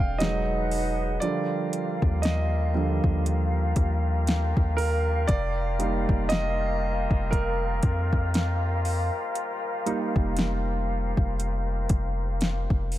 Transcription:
Already playing: 808-style bass E1, flute section D5 F5, grand piano E5 F5 G5
0.18 grand piano F#3 G#3 D#4 D#5, flute section D#4 G#4 B4 D#5 F#5, snare, closed hi-hat
0.71 open hi-hat
1.20 grand piano D3 F3 G3 D5, flute section F4 G4 A#4 F5, closed hi-hat
1.73 closed hi-hat
2.02 808-style bass D#2, kick
2.22 grand piano D#5, snare, closed hi-hat
2.74 grand piano D3 F3 G3
3.04 808-style bass D#2, kick
3.26 closed hi-hat
3.76 808-style bass D#2, kick, closed hi-hat
4.27 snare, closed hi-hat
4.57 808-style bass D#2, kick
4.77 grand piano A#4, open hi-hat
5.28 808-style bass F1, flute section C5, grand piano D5, kick, closed hi-hat
5.79 grand piano G3 A#3 D#4, closed hi-hat
6.09 808-style bass F1, kick
6.29 grand piano D#5, snare, closed hi-hat
7.11 808-style bass F1, kick
7.31 grand piano A#4, kick, closed hi-hat
7.83 808-style bass F2, kick, closed hi-hat
8.13 kick
8.34 snare, closed hi-hat
8.85 open hi-hat
9.35 closed hi-hat
9.86 grand piano G3 A#3 D#4, closed hi-hat
10.16 808-style bass F1, kick
10.37 snare, closed hi-hat
11.17 808-style bass F1, kick
11.40 closed hi-hat
11.89 808-style bass F1, kick, closed hi-hat
12.41 snare, closed hi-hat
12.70 808-style bass F1, kick
12.92 open hi-hat

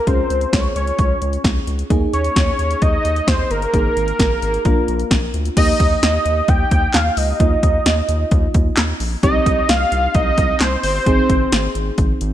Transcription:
0.07 analog synth bass C#2, fm electric piano C#4 F4 G#4, analog synth lead C5, kick, closed hi-hat
0.30 analog synth bass C#2, closed hi-hat
0.41 closed hi-hat
0.53 analog synth bass C#2, analog synth lead C#5, kick, snare, closed hi-hat
0.76 analog synth bass C#2, analog synth lead C#5, closed hi-hat
0.87 closed hi-hat
0.99 analog synth bass C#2, kick, closed hi-hat
1.22 analog synth bass C#2, closed hi-hat
1.33 closed hi-hat
1.44 analog synth bass C#2, kick, snare, closed hi-hat
1.67 analog synth bass C#2, closed hi-hat
1.79 closed hi-hat
1.90 analog synth bass D#2, fm electric piano A#3 D#4 G#4, kick, closed hi-hat
2.13 analog synth bass D#2, analog synth lead C#5, closed hi-hat
2.24 closed hi-hat
2.36 analog synth bass D#2, kick, snare, closed hi-hat
2.59 analog synth bass D#2, closed hi-hat
2.71 closed hi-hat
2.82 analog synth bass D#2, analog synth lead D#5, kick, closed hi-hat
3.05 analog synth bass D#2, closed hi-hat
3.16 closed hi-hat
3.28 analog synth bass D#2, analog synth lead C5, kick, snare, closed hi-hat
3.51 analog synth bass G1, analog synth lead A#4, closed hi-hat
3.62 closed hi-hat
3.73 analog synth bass G#1, fm electric piano A#3 D#4 G#4, kick, closed hi-hat
3.96 analog synth bass G#1, closed hi-hat
4.08 closed hi-hat
4.19 analog synth bass G#1, kick, snare, closed hi-hat
4.42 analog synth bass G#1, closed hi-hat
4.54 closed hi-hat
4.65 analog synth bass A#1, fm electric piano A#3 D4 F4, kick, closed hi-hat
4.88 analog synth bass A#1, closed hi-hat
4.99 closed hi-hat
5.11 analog synth bass A#1, kick, snare, closed hi-hat
5.34 analog synth bass D2, closed hi-hat
5.45 closed hi-hat
5.57 analog synth bass D#2, fm electric piano A#3 D#4 G4, analog synth lead D#5, kick, closed hi-hat, crash
5.80 analog synth bass D#2, kick, closed hi-hat
6.03 analog synth bass D#2, analog synth lead D#5, snare, closed hi-hat
6.26 analog synth bass D#2, closed hi-hat
6.48 analog synth bass D#2, analog synth lead G5, kick, closed hi-hat
6.71 analog synth bass D#2, kick, closed hi-hat
6.94 analog synth bass D#2, analog synth lead F5, snare, clap, closed hi-hat
7.17 analog synth bass C#2, analog synth lead D#5, open hi-hat
7.40 analog synth bass D#2, fm electric piano A#3 D#4 F4, kick, closed hi-hat
7.63 analog synth bass D#2, kick, closed hi-hat
7.86 analog synth bass D#2, snare, closed hi-hat
8.09 analog synth bass D#2, closed hi-hat
8.31 analog synth bass D#2, kick, closed hi-hat
8.54 analog synth bass D#2, kick, closed hi-hat
8.77 analog synth bass D#2, snare, clap, closed hi-hat
9.00 analog synth bass A#1, open hi-hat
9.23 analog synth bass C2, fm electric piano C4 D#4 G4, analog synth lead D#5, kick, closed hi-hat
9.46 analog synth bass C2, kick, closed hi-hat
9.69 analog synth bass C2, analog synth lead F5, snare, closed hi-hat
9.92 analog synth bass C2, closed hi-hat
10.14 analog synth bass C2, analog synth lead D#5, kick, closed hi-hat
10.38 analog synth bass C2, kick, closed hi-hat
10.60 analog synth bass C2, analog synth lead C5, snare, clap, closed hi-hat
10.83 analog synth bass G1, analog synth lead C5, open hi-hat
11.06 analog synth bass G#1, fm electric piano C4 D#4 G#4, kick, closed hi-hat
11.29 analog synth bass G#1, kick, closed hi-hat
11.52 analog synth bass G#1, snare, closed hi-hat
11.75 analog synth bass G#1, closed hi-hat
11.98 analog synth bass G#1, kick, closed hi-hat
12.21 analog synth bass G#1, closed hi-hat

